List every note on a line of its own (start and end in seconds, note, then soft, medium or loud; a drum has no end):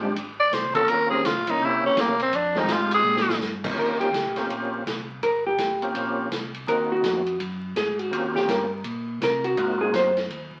0.00 0.15 A1 medium
0.00 0.13 G#3 medium
0.00 0.14 G#3 medium
0.00 0.13 C4 medium
0.00 0.14 D4 medium
0.00 0.14 F4 medium
0.00 0.14 G4 medium
0.16 0.51 G#1 medium
0.16 kick soft
0.16 ride medium
0.40 0.55 D5 loud
0.52 0.87 C2 medium
0.52 0.75 C5 medium
0.52 kick soft
0.52 snare medium
0.52 hi-hat pedal medium
0.52 ride medium
0.74 1.21 A#3 medium
0.74 1.22 C4 medium
0.74 1.22 C#4 medium
0.74 1.22 F4 medium
0.74 0.91 A4 loud
0.74 1.22 A#4 medium
0.74 kick medium
0.74 ride soft
0.88 1.23 D#2 medium
0.88 1.10 A#4 loud
0.88 kick soft
0.88 ride medium
1.10 1.23 D#3 medium
1.10 1.23 C#4 medium
1.10 1.23 G4 medium
1.10 1.28 G#4 loud
1.10 1.24 C5 medium
1.24 1.36 C#2 medium
1.24 1.52 F4 medium
1.24 kick soft
1.24 snare medium
1.24 hi-hat pedal medium
1.24 ride medium
1.36 1.48 A#1 medium
1.47 1.59 G1 medium
1.47 1.60 E3 medium
1.47 1.60 A#3 medium
1.47 1.60 C#4 medium
1.47 1.67 D#4 medium
1.47 ride medium
1.60 1.81 C2 medium
1.60 2.15 A#3 medium
1.60 2.16 C4 medium
1.60 2.15 C#4 medium
1.60 2.16 E4 medium
1.60 2.16 G4 medium
1.60 kick soft
1.65 1.86 E4 loud
1.82 1.89 C2 soft
1.82 2.02 C#4 medium
1.96 2.08 E2 medium
1.96 kick soft
1.96 snare medium
1.96 hi-hat pedal medium
1.96 ride medium
2.00 2.21 A#3 medium
2.08 2.21 C2 medium
2.20 2.32 A#1 medium
2.20 2.37 C4 medium
2.20 ride soft
2.33 2.68 F2 medium
2.33 2.60 D4 medium
2.33 kick soft
2.33 ride medium
2.55 2.67 D#3 medium
2.55 2.68 G#3 medium
2.55 3.03 G#3 medium
2.55 2.68 C4 medium
2.55 3.03 C4 medium
2.55 3.03 D#4 medium
2.55 2.74 D#4 medium
2.55 3.04 F4 medium
2.55 3.04 G4 medium
2.55 snare soft
2.68 3.04 G#2 medium
2.68 kick soft
2.68 snare medium
2.68 hi-hat pedal medium
2.68 ride medium
2.73 2.94 F4 loud
2.91 3.39 G#4 loud
2.91 ride medium
3.04 3.40 A#2 medium
3.04 3.26 G#3 medium
3.04 3.26 D4 medium
3.04 3.26 G4 medium
3.16 snare medium
3.29 snare medium
3.40 3.76 G2 medium
3.40 snare medium
3.40 hi-hat pedal medium
3.64 4.11 D#3 medium
3.64 4.11 A#3 medium
3.64 4.11 C4 medium
3.64 4.11 C#4 medium
3.64 4.11 F4 medium
3.64 4.12 G4 medium
3.64 kick medium
3.64 crash medium
3.77 4.13 D#2 medium
3.77 4.00 A#4 medium
3.77 kick soft
4.00 4.46 G4 medium
4.00 ride soft
4.14 4.25 C#2 medium
4.14 kick soft
4.14 snare medium
4.14 hi-hat pedal medium
4.14 ride medium
4.24 4.37 A#1 medium
4.36 4.48 G1 medium
4.36 4.84 A#3 medium
4.36 4.84 C4 medium
4.36 4.84 C#4 medium
4.36 4.84 F4 medium
4.36 4.84 G4 medium
4.36 snare soft
4.36 ride soft
4.50 4.85 A#1 medium
4.50 kick soft
4.50 ride medium
4.86 5.21 C2 medium
4.86 kick soft
4.86 snare medium
4.86 hi-hat pedal soft
4.86 ride medium
5.22 5.57 G1 medium
5.22 5.45 A#4 medium
5.22 kick soft
5.22 ride medium
5.47 5.92 G4 medium
5.58 5.94 G#1 medium
5.58 kick soft
5.58 snare medium
5.58 hi-hat pedal medium
5.58 ride medium
5.82 6.29 A#3 medium
5.82 6.29 C4 medium
5.82 6.29 C#4 medium
5.82 6.29 F4 medium
5.82 6.30 G4 medium
5.82 ride soft
5.95 6.30 A#1 medium
5.95 kick soft
5.95 ride medium
6.31 6.66 C2 medium
6.31 kick soft
6.31 snare medium
6.31 hi-hat pedal medium
6.31 ride medium
6.54 ride soft
6.67 7.03 D#2 medium
6.67 7.22 A#3 medium
6.67 7.22 C4 medium
6.67 7.22 D#4 medium
6.67 7.22 F#4 medium
6.67 6.90 A#4 medium
6.67 kick soft
6.67 ride medium
6.92 7.37 F#4 medium
7.04 7.39 F2 medium
7.04 kick soft
7.04 snare medium
7.04 hi-hat pedal medium
7.04 ride medium
7.27 ride soft
7.40 7.75 F#2 medium
7.40 kick soft
7.40 ride medium
7.76 8.11 G#2 medium
7.76 7.99 G#4 medium
7.76 kick soft
7.76 snare medium
7.76 hi-hat pedal soft
7.76 ride medium
7.99 8.35 F#4 medium
7.99 ride soft
8.11 8.47 D#2 medium
8.11 8.66 A#3 medium
8.11 8.66 C4 medium
8.11 8.66 C#4 medium
8.11 8.67 F4 medium
8.11 8.67 G4 medium
8.11 kick soft
8.11 ride medium
8.36 8.48 G4 medium
8.36 snare medium
8.48 8.84 G2 medium
8.48 8.71 A#4 medium
8.48 kick soft
8.48 snare medium
8.48 hi-hat pedal medium
8.48 ride medium
8.84 9.20 A#2 medium
8.84 kick soft
8.84 ride medium
9.21 9.56 C3 medium
9.21 9.44 A#4 medium
9.21 kick soft
9.21 snare medium
9.21 hi-hat pedal medium
9.21 ride medium
9.44 9.78 F#4 medium
9.44 ride soft
9.57 9.92 G#2 medium
9.57 10.12 A#3 medium
9.57 10.12 C4 medium
9.57 10.12 D#4 medium
9.57 10.12 F4 medium
9.57 10.12 F#4 medium
9.57 kick soft
9.57 ride medium
9.81 9.94 G#4 medium
9.93 10.28 F#2 medium
9.93 10.17 C5 medium
9.93 kick soft
9.93 snare medium
9.93 hi-hat pedal medium
9.93 ride medium
10.17 snare medium
10.17 ride soft
10.30 10.50 D#2 medium
10.30 kick soft
10.30 ride medium
10.52 10.59 D#2 soft